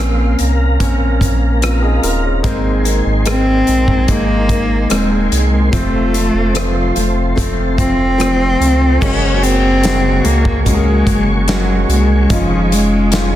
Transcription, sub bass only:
0, 0, Header, 1, 2, 480
1, 0, Start_track
1, 0, Tempo, 821918
1, 1427, Time_signature, 4, 2, 24, 8
1, 7800, End_track
2, 0, Start_track
2, 0, Title_t, "Sub bass"
2, 0, Program_c, 0, 38
2, 0, Note_on_c, 0, 34, 99
2, 206, Note_off_c, 0, 34, 0
2, 234, Note_on_c, 0, 36, 86
2, 454, Note_off_c, 0, 36, 0
2, 470, Note_on_c, 0, 34, 96
2, 1165, Note_off_c, 0, 34, 0
2, 1187, Note_on_c, 0, 27, 91
2, 1410, Note_off_c, 0, 27, 0
2, 1423, Note_on_c, 0, 32, 101
2, 1761, Note_off_c, 0, 32, 0
2, 1787, Note_on_c, 0, 32, 100
2, 2123, Note_off_c, 0, 32, 0
2, 2149, Note_on_c, 0, 34, 87
2, 2371, Note_off_c, 0, 34, 0
2, 2384, Note_on_c, 0, 32, 94
2, 2842, Note_off_c, 0, 32, 0
2, 2866, Note_on_c, 0, 27, 89
2, 3089, Note_off_c, 0, 27, 0
2, 3105, Note_on_c, 0, 36, 83
2, 3329, Note_off_c, 0, 36, 0
2, 3345, Note_on_c, 0, 29, 95
2, 3682, Note_off_c, 0, 29, 0
2, 3702, Note_on_c, 0, 29, 93
2, 4041, Note_off_c, 0, 29, 0
2, 4067, Note_on_c, 0, 29, 86
2, 4290, Note_off_c, 0, 29, 0
2, 4305, Note_on_c, 0, 29, 92
2, 5002, Note_off_c, 0, 29, 0
2, 5024, Note_on_c, 0, 37, 86
2, 5248, Note_off_c, 0, 37, 0
2, 5268, Note_on_c, 0, 30, 105
2, 5964, Note_off_c, 0, 30, 0
2, 5986, Note_on_c, 0, 37, 83
2, 6443, Note_off_c, 0, 37, 0
2, 6466, Note_on_c, 0, 30, 99
2, 6923, Note_off_c, 0, 30, 0
2, 6941, Note_on_c, 0, 36, 104
2, 7167, Note_off_c, 0, 36, 0
2, 7185, Note_on_c, 0, 29, 99
2, 7800, Note_off_c, 0, 29, 0
2, 7800, End_track
0, 0, End_of_file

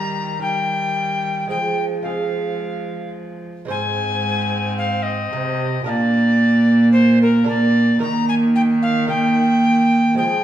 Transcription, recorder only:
0, 0, Header, 1, 2, 480
1, 0, Start_track
1, 0, Tempo, 541516
1, 1333, Time_signature, 4, 2, 24, 8
1, 9253, End_track
2, 0, Start_track
2, 0, Title_t, "Recorder"
2, 0, Program_c, 0, 74
2, 0, Note_on_c, 0, 82, 119
2, 360, Note_off_c, 0, 82, 0
2, 369, Note_on_c, 0, 79, 105
2, 1312, Note_off_c, 0, 79, 0
2, 1329, Note_on_c, 0, 79, 91
2, 1640, Note_off_c, 0, 79, 0
2, 1801, Note_on_c, 0, 77, 68
2, 2748, Note_off_c, 0, 77, 0
2, 3282, Note_on_c, 0, 80, 123
2, 4202, Note_off_c, 0, 80, 0
2, 4237, Note_on_c, 0, 77, 120
2, 4455, Note_on_c, 0, 75, 101
2, 4469, Note_off_c, 0, 77, 0
2, 5182, Note_off_c, 0, 75, 0
2, 5190, Note_on_c, 0, 75, 117
2, 5224, Note_on_c, 0, 74, 127
2, 5232, Note_off_c, 0, 75, 0
2, 6124, Note_off_c, 0, 74, 0
2, 6137, Note_on_c, 0, 72, 127
2, 6373, Note_off_c, 0, 72, 0
2, 6400, Note_on_c, 0, 70, 112
2, 6624, Note_off_c, 0, 70, 0
2, 6638, Note_on_c, 0, 74, 119
2, 7096, Note_off_c, 0, 74, 0
2, 7108, Note_on_c, 0, 82, 127
2, 7335, Note_off_c, 0, 82, 0
2, 7346, Note_on_c, 0, 80, 124
2, 7399, Note_off_c, 0, 80, 0
2, 7584, Note_on_c, 0, 79, 117
2, 7637, Note_off_c, 0, 79, 0
2, 7821, Note_on_c, 0, 77, 117
2, 8050, Note_off_c, 0, 77, 0
2, 8055, Note_on_c, 0, 79, 125
2, 8998, Note_off_c, 0, 79, 0
2, 9019, Note_on_c, 0, 79, 106
2, 9253, Note_off_c, 0, 79, 0
2, 9253, End_track
0, 0, End_of_file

